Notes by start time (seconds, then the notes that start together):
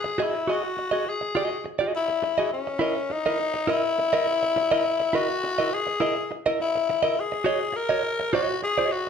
Already playing: G#4
0.04 muted clean electric guitar stroke
0.18 F#4 G#4 D#5
0.22 E4
0.35 muted clean electric guitar stroke
0.47 F#4 G#4 D#5
0.63 muted clean electric guitar stroke
0.77 muted clean electric guitar stroke
0.91 F#4 G#4 D#5
1.06 G#4, muted clean electric guitar stroke
1.21 muted clean electric guitar stroke
1.35 F#4 G#4 D#5
1.50 muted clean electric guitar stroke
1.64 muted clean electric guitar stroke
1.79 F#4 G#4 D#5
1.94 E4, muted clean electric guitar stroke
2.08 muted clean electric guitar stroke
2.23 muted clean electric guitar stroke
2.38 F#4 G#4 D#5
2.51 C#4, muted clean electric guitar stroke
2.67 muted clean electric guitar stroke
2.79 E4 A#4 D#5
2.96 muted clean electric guitar stroke
3.10 D#4, muted clean electric guitar stroke
3.26 E4 A#4 D#5
3.40 muted clean electric guitar stroke
3.54 muted clean electric guitar stroke
3.67 E4 A#4 D#5
3.84 muted clean electric guitar stroke
3.98 muted clean electric guitar stroke
4.13 E4 A#4 D#5
4.27 muted clean electric guitar stroke
4.43 muted clean electric guitar stroke
4.56 muted clean electric guitar stroke
4.72 E4 A#4 D#5
4.85 muted clean electric guitar stroke
5.00 muted clean electric guitar stroke
5.13 E4 F#4 A#4 D#5
5.29 muted clean electric guitar stroke
5.44 muted clean electric guitar stroke
5.58 E4 A#4 D#5
5.72 G#4, muted clean electric guitar stroke
5.87 muted clean electric guitar stroke
6.00 E4 A#4 D#5
6.16 muted clean electric guitar stroke
6.31 muted clean electric guitar stroke
6.46 E4 A#4 D#5
6.60 E4, muted clean electric guitar stroke
6.75 muted clean electric guitar stroke
6.89 muted clean electric guitar stroke
7.03 E4 A#4 D#5
7.16 G#4, muted clean electric guitar stroke
7.32 muted clean electric guitar stroke
7.44 F#4 C#5 D#5
7.60 muted clean electric guitar stroke
7.73 A#4, muted clean electric guitar stroke
7.89 F#4 C#5 D#5
8.03 muted clean electric guitar stroke
8.20 muted clean electric guitar stroke
8.33 F#4 C#5 D#5
8.49 muted clean electric guitar stroke
8.63 G#4, muted clean electric guitar stroke
8.78 F#4 C#5 D#5
8.92 F#4, muted clean electric guitar stroke